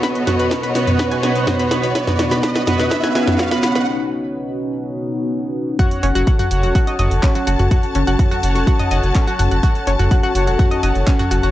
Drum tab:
HH |xxoxxxoxxxoxxxox|xxoxxxoxxxoxxxox|----------------|xxoxxxoxxxoxxxox|
CP |----------------|----------------|----------------|------------x---|
SD |o-o-o-o-o-o-o-o-|oooooooooooooooo|----------------|----------------|
T2 |--o----o----o---|-o----o----o----|----------------|o----o----o----o|
BD |o---o---o---o---|o---o---o---o---|----------------|o---o---o---o---|

HH |xxoxxxoxxxoxxxox|xxoxxxoxxxoxxxox|
CP |------------x---|------------x---|
SD |----------------|----------------|
T2 |----o----o----o-|---o----o----o--|
BD |o---o---o---o---|o---o---o---o---|